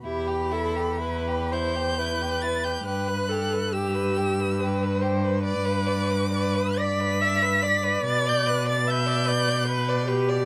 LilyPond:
<<
  \new Staff \with { instrumentName = "Violin" } { \time 3/4 \key e \minor \tempo 4 = 69 b''4. g'''4 a'''16 g'''16 | fis'''4 e'''4. r8 | d'''4. b'''4. | a'''16 g'''16 fis'''16 a'''16 g'''4. r8 | }
  \new Staff \with { instrumentName = "Viola" } { \time 3/4 \key e \minor g'8 a'8 b'8 c''8 b'4 | b'8 a'8 g'4 b'8 c''8 | b'4 b'8 d''8 e''8 d''8~ | d''4 e''8 d''8 b'8 g'8 | }
  \new Staff \with { instrumentName = "Violin" } { \time 3/4 \key e \minor e'16 g'16 e'16 g'16 e'16 g'16 e'16 g'16 e'16 g'16 e'16 g'16 | g'16 b'16 g'16 b'16 g'16 b'16 g'16 b'16 g'16 b'16 g'16 b'16 | d''16 b'16 d''16 b'16 d''16 b'16 d''16 b'16 d''16 b'16 d''16 b'16 | b'16 d''16 b'16 d''16 b'16 d''16 b'16 d''16 b'16 d''16 b'16 d''16 | }
  \new Staff \with { instrumentName = "Cello" } { \clef bass \time 3/4 \key e \minor e,2. | g,2.~ | g,2. | b,2. | }
>>